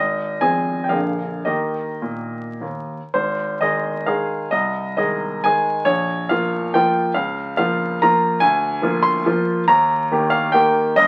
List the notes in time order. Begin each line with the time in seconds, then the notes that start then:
Already playing: G#1 D#5
0.41 F3 C4 G#4 G#5
0.84 G5
0.89 A#1 D3 A#3 G#4 F5
1.45 D#3 A#3 G4 D#5
2.02 A#2
2.61 D#2
3.14 G#1 C5
3.60 D#3 G#3 G#4 D#5
4.06 D#3 G#3 G#4 F5
4.51 C2 D#5
4.97 D#3 G#3 G#4 D#5
5.44 D#3 G#3 G#4 G#5
5.85 A#1 C#5
6.29 F3 A#3 F4 F5
6.74 F3 A#3 F4 G5
7.14 C#2 F5
7.57 F3 A#3 F4 F5
8.02 F3 A#3 F4 A#5
8.40 D2 G#5
8.82 F3 A#3 F4
9.03 C6
9.26 F3 A#3 F4
9.68 D#2 A#5
10.11 D#3 A#3 G4
10.30 F5
10.52 D#3 A#3 G4 G5
10.96 G1 D#5